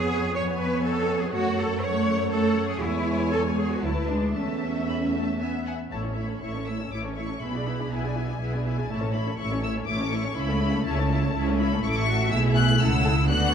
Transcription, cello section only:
0, 0, Header, 1, 2, 480
1, 0, Start_track
1, 0, Key_signature, 3, "major"
1, 0, Tempo, 492611
1, 1297, Time_signature, 3, 2, 24, 8
1, 3230, Tempo, 515907
1, 6590, Tempo, 492611
1, 10910, Tempo, 484262
1, 13075, End_track
2, 0, Start_track
2, 0, Title_t, "Cello section"
2, 0, Program_c, 0, 48
2, 0, Note_on_c, 0, 68, 103
2, 335, Note_off_c, 0, 68, 0
2, 344, Note_on_c, 0, 73, 99
2, 422, Note_off_c, 0, 73, 0
2, 579, Note_on_c, 0, 71, 93
2, 812, Note_off_c, 0, 71, 0
2, 814, Note_on_c, 0, 69, 103
2, 1167, Note_off_c, 0, 69, 0
2, 1182, Note_on_c, 0, 68, 85
2, 1293, Note_on_c, 0, 66, 106
2, 1300, Note_off_c, 0, 68, 0
2, 1532, Note_off_c, 0, 66, 0
2, 1536, Note_on_c, 0, 69, 97
2, 1777, Note_off_c, 0, 69, 0
2, 1777, Note_on_c, 0, 73, 107
2, 2256, Note_off_c, 0, 73, 0
2, 2260, Note_on_c, 0, 69, 100
2, 2615, Note_off_c, 0, 69, 0
2, 2625, Note_on_c, 0, 68, 93
2, 2742, Note_off_c, 0, 68, 0
2, 2742, Note_on_c, 0, 64, 104
2, 3230, Note_off_c, 0, 64, 0
2, 3230, Note_on_c, 0, 69, 102
2, 3304, Note_off_c, 0, 69, 0
2, 3463, Note_on_c, 0, 68, 71
2, 3581, Note_off_c, 0, 68, 0
2, 3587, Note_on_c, 0, 66, 74
2, 3703, Note_on_c, 0, 64, 83
2, 3705, Note_off_c, 0, 66, 0
2, 3940, Note_on_c, 0, 62, 75
2, 3945, Note_off_c, 0, 64, 0
2, 4185, Note_on_c, 0, 61, 80
2, 4187, Note_off_c, 0, 62, 0
2, 5409, Note_off_c, 0, 61, 0
2, 5642, Note_on_c, 0, 45, 49
2, 6062, Note_off_c, 0, 45, 0
2, 6118, Note_on_c, 0, 45, 49
2, 6532, Note_off_c, 0, 45, 0
2, 6585, Note_on_c, 0, 45, 49
2, 7014, Note_off_c, 0, 45, 0
2, 7072, Note_on_c, 0, 47, 57
2, 7497, Note_off_c, 0, 47, 0
2, 7552, Note_on_c, 0, 47, 55
2, 7977, Note_off_c, 0, 47, 0
2, 8040, Note_on_c, 0, 47, 54
2, 8460, Note_off_c, 0, 47, 0
2, 8514, Note_on_c, 0, 45, 69
2, 8934, Note_off_c, 0, 45, 0
2, 8992, Note_on_c, 0, 45, 69
2, 9413, Note_off_c, 0, 45, 0
2, 9468, Note_on_c, 0, 45, 67
2, 9892, Note_off_c, 0, 45, 0
2, 9945, Note_on_c, 0, 49, 78
2, 10371, Note_off_c, 0, 49, 0
2, 10427, Note_on_c, 0, 49, 74
2, 10853, Note_off_c, 0, 49, 0
2, 10908, Note_on_c, 0, 49, 75
2, 11331, Note_off_c, 0, 49, 0
2, 11388, Note_on_c, 0, 45, 88
2, 11835, Note_off_c, 0, 45, 0
2, 11868, Note_on_c, 0, 47, 92
2, 12348, Note_on_c, 0, 49, 86
2, 12350, Note_off_c, 0, 47, 0
2, 12820, Note_off_c, 0, 49, 0
2, 12830, Note_on_c, 0, 50, 92
2, 13075, Note_off_c, 0, 50, 0
2, 13075, End_track
0, 0, End_of_file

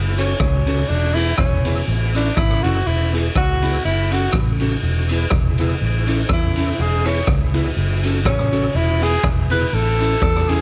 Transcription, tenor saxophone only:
0, 0, Header, 1, 2, 480
1, 0, Start_track
1, 0, Tempo, 490597
1, 1839, Time_signature, 4, 2, 24, 8
1, 10383, End_track
2, 0, Start_track
2, 0, Title_t, "Tenor saxophone"
2, 0, Program_c, 0, 66
2, 180, Note_on_c, 0, 61, 88
2, 869, Note_on_c, 0, 62, 102
2, 884, Note_off_c, 0, 61, 0
2, 1119, Note_on_c, 0, 64, 114
2, 1133, Note_off_c, 0, 62, 0
2, 1348, Note_off_c, 0, 64, 0
2, 1354, Note_on_c, 0, 61, 92
2, 1803, Note_off_c, 0, 61, 0
2, 2116, Note_on_c, 0, 62, 90
2, 2316, Note_on_c, 0, 64, 98
2, 2331, Note_off_c, 0, 62, 0
2, 2570, Note_on_c, 0, 66, 100
2, 2584, Note_off_c, 0, 64, 0
2, 2803, Note_on_c, 0, 64, 89
2, 2818, Note_off_c, 0, 66, 0
2, 3064, Note_off_c, 0, 64, 0
2, 3300, Note_on_c, 0, 66, 108
2, 3737, Note_off_c, 0, 66, 0
2, 3767, Note_on_c, 0, 64, 99
2, 4036, Note_on_c, 0, 66, 98
2, 4050, Note_off_c, 0, 64, 0
2, 4247, Note_off_c, 0, 66, 0
2, 6194, Note_on_c, 0, 64, 88
2, 6662, Note_on_c, 0, 68, 105
2, 6676, Note_off_c, 0, 64, 0
2, 6914, Note_on_c, 0, 73, 95
2, 6928, Note_off_c, 0, 68, 0
2, 7125, Note_off_c, 0, 73, 0
2, 8081, Note_on_c, 0, 61, 93
2, 8570, Note_on_c, 0, 64, 99
2, 8585, Note_off_c, 0, 61, 0
2, 8836, Note_on_c, 0, 68, 108
2, 8850, Note_off_c, 0, 64, 0
2, 9045, Note_off_c, 0, 68, 0
2, 9307, Note_on_c, 0, 71, 100
2, 9467, Note_off_c, 0, 71, 0
2, 9467, Note_on_c, 0, 71, 77
2, 9525, Note_on_c, 0, 69, 117
2, 9540, Note_off_c, 0, 71, 0
2, 10269, Note_on_c, 0, 68, 105
2, 10284, Note_off_c, 0, 69, 0
2, 10383, Note_off_c, 0, 68, 0
2, 10383, End_track
0, 0, End_of_file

